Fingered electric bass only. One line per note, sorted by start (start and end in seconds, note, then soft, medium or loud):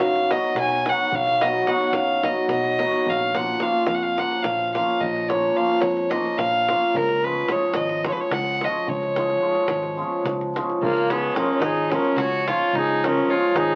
0.00 0.33 F#2 medium
0.55 0.89 B1 medium
1.12 1.61 B1 medium
1.92 2.27 F#2 medium
2.48 2.83 B1 medium
3.06 3.54 A#1 medium
3.88 4.22 F2 medium
4.46 4.80 A#1 medium
5.02 5.50 A#1 medium
5.82 6.16 F2 medium
6.38 6.72 A#1 medium
6.94 7.42 C#2 medium
7.75 8.09 G#1 medium
8.31 8.65 C#2 medium
8.88 9.36 C#2 medium
9.67 10.02 G#1 medium
10.24 10.58 C#2 medium
10.81 11.29 C#2 medium
11.60 11.94 G#1 medium
12.16 12.51 C#2 medium
12.73 13.21 C#2 medium
13.54 13.75 G#1 medium